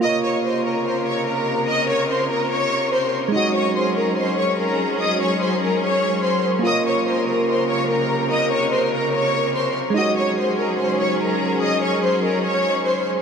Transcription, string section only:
\new Staff \with { instrumentName = "String section" } { \time 4/4 \key bes \minor \tempo 4 = 145 <c des bes'>1~ | <c des bes'>1 | <ges des' aes'>1~ | <ges des' aes'>1 |
<c des bes'>1~ | <c des bes'>1 | <ges des' aes'>1~ | <ges des' aes'>1 | }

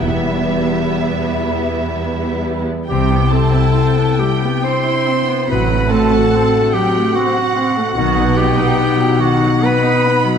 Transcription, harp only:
\new Staff \with { instrumentName = "Harp" } { \time 3/4 \key c \lydian \tempo 4 = 70 << { <e b e' g'>2.~ | <e b e' g'>2. | r2. | r2. | } \\ { r2. | \tuplet 3/2 { c8 g'8 b8 e'8 fis'8 e'8 d'8 e'8 b8 } | \tuplet 3/2 { a,8 fis'8 a8 c'8 d'8 c'8 b8 c'8 a8 } | \tuplet 3/2 { b,8 fis'8 b8 dis'8 e'8 dis'8 c'8 dis'8 b8 } | } >> }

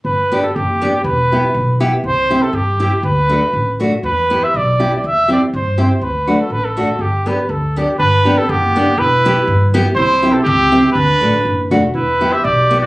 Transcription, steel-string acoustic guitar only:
\new Staff \with { instrumentName = "Steel-string acoustic guitar" } { \time 2/4 \key g \major \tempo 4 = 121 r8 <b d' g'>8 r8 <b d' g'>8 | r8 <b e' g'>8 r8 <b e' g'>8 | r8 <c' e' g'>8 r8 <c' e' g'>8 | r8 <a d' fis'>8 r8 <a d' fis'>8 |
r8 <b e' g'>8 r8 <b e' g'>8 | r8 <c' e' g'>8 r8 <c' e' g'>8 | r8 <a d' fis'>8 r8 <a d' fis'>8 | r8 <b d' g'>8 r8 <b d' g'>8 |
r8 <b d' g'>8 r8 <b d' g'>8 | r8 <b e' g'>8 r8 <b e' g'>8 | r8 <c' e' g'>8 r8 <c' e' g'>8 | r8 <a d' fis'>8 r8 <a d' fis'>8 |
r8 <b e' g'>8 r8 <b e' g'>8 | }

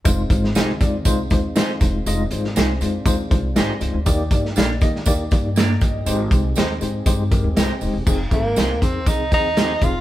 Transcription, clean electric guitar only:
\new Staff \with { instrumentName = "Clean electric guitar" } { \time 4/4 \key f \dorian \tempo 4 = 120 r4 <ees' aes' c''>8 r4. <ees' aes' c''>8 r8 | r4 <ees' aes' c''>8 r4. <ees' aes' c''>8 r8 | r4 <bes d' g'>8 r4. <bes d' g'>8 r8 | r4 <ees' g' c''>8 r4. <ees' g' c''>8 r8 |
r4 <ees' aes' c''>8 r4. <ees' aes' c''>8 r8 | }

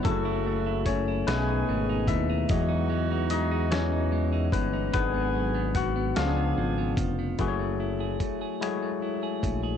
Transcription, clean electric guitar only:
\new Staff \with { instrumentName = "Clean electric guitar" } { \time 6/8 \key fis \minor \tempo 4. = 49 fis16 e'16 a16 e'16 a16 e'16 b,16 dis'16 a16 dis'16 a16 dis'16 | e16 dis'16 gis16 dis'16 gis16 dis'16 e16 dis'16 gis16 dis'16 gis16 dis'16 | gis,16 b16 fis16 b16 fis16 b16 cis16 b16 eis16 b16 eis16 b16 | fis16 a16 e'16 gis'16 a16 gis'16 fis16 a16 e'16 gis'16 a16 gis'16 | }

